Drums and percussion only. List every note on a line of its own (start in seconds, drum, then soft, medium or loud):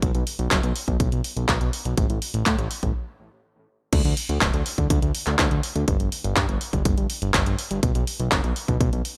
0.02 kick loud
0.02 closed hi-hat medium
0.15 closed hi-hat soft
0.27 open hi-hat loud
0.39 closed hi-hat soft
0.51 kick loud
0.51 clap loud
0.51 closed hi-hat medium
0.63 closed hi-hat soft
0.76 open hi-hat medium
0.88 kick medium
0.88 closed hi-hat soft
1.00 kick loud
1.00 closed hi-hat medium
1.12 closed hi-hat soft
1.24 open hi-hat loud
1.37 closed hi-hat soft
1.49 kick loud
1.49 clap loud
1.49 closed hi-hat medium
1.61 closed hi-hat soft
1.73 open hi-hat medium
1.85 closed hi-hat soft
1.97 kick loud
1.97 closed hi-hat medium
2.10 closed hi-hat soft
2.22 open hi-hat loud
2.34 closed hi-hat soft
2.46 kick loud
2.46 clap loud
2.46 closed hi-hat medium
2.59 closed hi-hat soft
2.71 open hi-hat medium
2.83 kick medium
2.83 closed hi-hat soft
3.93 kick loud
3.93 closed hi-hat medium
3.93 crash loud
4.05 closed hi-hat soft
4.17 open hi-hat loud
4.29 closed hi-hat soft
4.41 kick loud
4.41 clap loud
4.41 closed hi-hat loud
4.54 closed hi-hat soft
4.66 open hi-hat loud
4.78 kick medium
4.78 closed hi-hat soft
4.90 kick loud
4.90 closed hi-hat loud
5.02 closed hi-hat soft
5.15 open hi-hat loud
5.27 clap soft
5.27 closed hi-hat soft
5.39 kick loud
5.39 clap loud
5.39 closed hi-hat loud
5.51 closed hi-hat soft
5.63 open hi-hat loud
5.76 closed hi-hat soft
5.88 kick loud
5.88 closed hi-hat loud
6.00 closed hi-hat soft
6.12 open hi-hat loud
6.24 closed hi-hat soft
6.37 kick loud
6.37 clap loud
6.37 closed hi-hat loud
6.49 closed hi-hat soft
6.61 open hi-hat medium
6.73 kick medium
6.73 closed hi-hat soft
6.85 kick loud
6.85 closed hi-hat loud
6.98 closed hi-hat soft
7.10 open hi-hat loud
7.22 closed hi-hat soft
7.34 kick loud
7.34 clap loud
7.34 closed hi-hat loud
7.46 closed hi-hat soft
7.59 open hi-hat medium
7.71 closed hi-hat soft
7.83 kick loud
7.83 closed hi-hat medium
7.95 closed hi-hat soft
8.07 open hi-hat loud
8.20 closed hi-hat soft
8.32 kick loud
8.32 clap loud
8.32 closed hi-hat medium
8.44 closed hi-hat soft
8.56 open hi-hat medium
8.68 kick medium
8.68 closed hi-hat soft
8.81 kick loud
8.81 closed hi-hat loud
8.93 closed hi-hat soft
9.05 open hi-hat loud